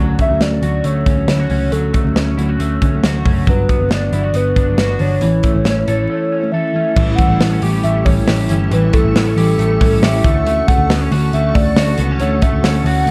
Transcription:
Already playing: D2 D3 F#3 A3 D4 F#4
0.00 C#4
0.19 A3 E5, kick, closed hi-hat
0.29 D2 F#3 A3 C#4
0.40 D2 D5, snare, closed hi-hat
0.61 D2 D3 F#3 A3 C#4 F#4, closed hi-hat
0.84 D2 A3 C#5, closed hi-hat
1.06 D2 C#4, kick, closed hi-hat
1.16 F#3 A3 C#4
1.27 D2 D3 F#3 A3 C#4 E4, snare, closed hi-hat
1.40 F#4
1.49 C#2 D3 F#3 A3 C#4, open hi-hat
1.71 D2 D3 F#3 A3 C#4 A4, closed hi-hat
1.93 A3, kick, closed hi-hat
2.04 D2 F#3 A3 C#4
2.16 D2 C#4, snare, closed hi-hat
2.37 D2 D3 F#3 A3 C#4 E4, closed hi-hat
2.49 F#4
2.59 D2 A3, closed hi-hat
2.82 D2 C#4, kick, closed hi-hat
2.92 F#3 A3 C#4
3.03 D2 D3 F#3 A3 C#4 F#4, snare, closed hi-hat
3.25 F#1 D3 F#3 A3 C#4, kick, open hi-hat
3.47 G1 G2 D3 F#3 B3 D4 B4, kick, closed hi-hat
3.69 B3, kick, closed hi-hat
3.79 G1 F#3 B3 D4
3.90 G1 D4 D5, snare, closed hi-hat
4.11 G1 D3 F#3 B3 D4 E4, closed hi-hat
4.24 F#4
4.34 G1 B3 B4, closed hi-hat
4.56 G1 D4, kick, closed hi-hat
4.65 F#3 B3 D4
4.77 G1 D3 F#3 B3 D4 F#4, snare, closed hi-hat
4.99 G1 D3 F#3 B3 D4 C#5, open hi-hat
5.21 A1 A2 E3 A3 C#4 E4, closed hi-hat
5.43 A3, kick, closed hi-hat
5.54 A1 A3 C#4 E4
5.65 A1 C#4, snare, closed hi-hat
5.86 A1 E3 A3 C#4 E4 A4, closed hi-hat
6.10 A3
6.32 C#4
6.40 A3 C#4 E4
6.52 E3 A3 C#4 E4 A4 E5
6.73 E3 A3 C#4 E4
6.93 A1 A2 E3 G3 C#4 G4 A4 E5 C#6, kick, crash
6.97 E3 E4 E5
7.15 E3 G3 F#5, kick, hi-hat pedal, open hi-hat
7.19 A3 C#4 E4
7.28 A1
7.40 A1 B3, snare, hi-hat pedal, open hi-hat
7.52 C#4
7.61 A1 E3 G3 C#4 E4 G4, hi-hat pedal, open hi-hat
7.83 A1 A3 E5, hi-hat pedal, open hi-hat
8.04 A1 E3 G3 C#4 E4 C#5, kick, hi-hat pedal, open hi-hat
8.26 A1 E3 G3 C#4 E4 G4, snare, hi-hat pedal, open hi-hat
8.49 G1 E3 G3 C#4 E4, hi-hat pedal, open hi-hat
8.71 A1 A2 E3 G3 C#4 E4 B4, hi-hat pedal, open hi-hat
8.93 E3 G3 A3 C#4 E4 A4, kick, hi-hat pedal, open hi-hat
9.04 A1
9.15 A1 B3 A4, snare, hi-hat pedal, open hi-hat
9.27 C#4
9.36 A1 E3 G3 C#4 E4 G4, hi-hat pedal, open hi-hat
9.59 A1 A3, hi-hat pedal, open hi-hat
9.80 A1 E3 G3 C#4 E4, kick, hi-hat pedal, open hi-hat
10.01 A1 E3 G3 E4 G4 E5, snare, hi-hat pedal, open hi-hat
10.23 D2 D3 A3 C#4 F#4 A5, kick, hi-hat pedal, open hi-hat
10.45 D3 A3 C#4 F#4 E5, hi-hat pedal, open hi-hat
10.67 D3 A3 C#4 F#4 F#5, kick, hi-hat pedal, open hi-hat
10.78 D2
10.89 D2 B3, snare, hi-hat pedal, open hi-hat
11.01 C#4
11.11 D2 D3 A3 C#4 F#4, hi-hat pedal, open hi-hat
11.33 D2 A3 E5, hi-hat pedal, open hi-hat
11.54 D2 D3 A3 C#4 F#4 D5, kick, hi-hat pedal, open hi-hat
11.76 D2 D3 A3 C#4 F#4, snare, hi-hat pedal, open hi-hat
11.96 C#2 D3 A3 B3 C#4 F#4, hi-hat pedal, open hi-hat
12.11 C#4
12.18 D2 D3 A3 C#4 F#4 C#5, hi-hat pedal, open hi-hat
12.39 D3 A3 C#4 F#4 E5, kick, hi-hat pedal, open hi-hat
12.53 D2
12.63 D2 C#4 F#5, snare, hi-hat pedal, open hi-hat
12.83 D2 D3 A3 C#4 F#4, hi-hat pedal, open hi-hat
13.06 D2, hi-hat pedal, open hi-hat

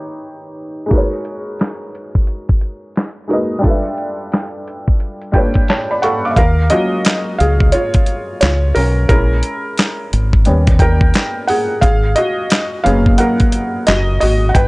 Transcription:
Already playing: D#3 D#4 G4 B4 C#5
0.86 G#3 D#4
0.91 F#4 A#4, kick, closed hi-hat
0.95 B4 C#5
1.25 closed hi-hat
1.60 snare, clap, closed hi-hat
1.95 closed hi-hat
2.15 kick
2.27 closed hi-hat
2.49 kick, closed hi-hat
2.61 closed hi-hat
2.96 snare, clap, closed hi-hat
3.27 G#3 D#4 F#4 A#4, closed hi-hat
3.32 B4 D#5
3.59 G3 D4
3.63 F4 A4, kick, closed hi-hat
3.68 B4 E5
3.98 closed hi-hat
4.32 snare, clap, closed hi-hat
4.68 closed hi-hat
4.88 kick
5.00 closed hi-hat
5.22 closed hi-hat
5.32 G3 D4 F4 A4 B4 G5, kick, closed hi-hat
5.38 C#5
5.54 kick, closed hi-hat
5.68 C#5 A5, snare, clap, closed hi-hat
5.91 D5 B5
6.02 A4 F5 F#5 C#6, closed hi-hat
6.25 F5 D6
6.31 E5
6.36 D#2 A#4 F5, kick, closed hi-hat
6.70 F#3 C#4 F4 F#4 D#5, closed hi-hat
7.05 snare, clap, closed hi-hat
7.38 C#2 G#4 F5, closed hi-hat
7.60 kick
7.72 F4 C#5, closed hi-hat
7.94 kick, closed hi-hat
8.06 closed hi-hat
8.41 C#2 F4 C#5, snare, clap, closed hi-hat
8.75 B1 C#4 A#4, open hi-hat
9.09 A#1 G#3 C#4 E4 A#4, kick, closed hi-hat
9.43 closed hi-hat
9.78 snare, clap, closed hi-hat
10.13 G#1, closed hi-hat
10.33 kick
10.45 D#2 G3 B3 C#4, closed hi-hat
10.67 kick, closed hi-hat
10.79 A#4 G5, kick, closed hi-hat
11.01 kick
11.14 snare, clap, closed hi-hat
11.47 G#4 F#5, open hi-hat
11.81 G#1 G#4 F5, kick, closed hi-hat
12.16 F#4 D#5, closed hi-hat
12.50 snare, clap, closed hi-hat
12.84 F#1 F#3 A#3 B3 C#4 G#4 F5, closed hi-hat
13.06 kick
13.18 A#4 F#5, closed hi-hat
13.40 kick, closed hi-hat
13.52 closed hi-hat
13.87 F#1 F#4 D#5, snare, clap, closed hi-hat
14.20 G#1 F#4 D#5, open hi-hat
14.49 F#5
14.54 G1 B4 G5, kick, closed hi-hat

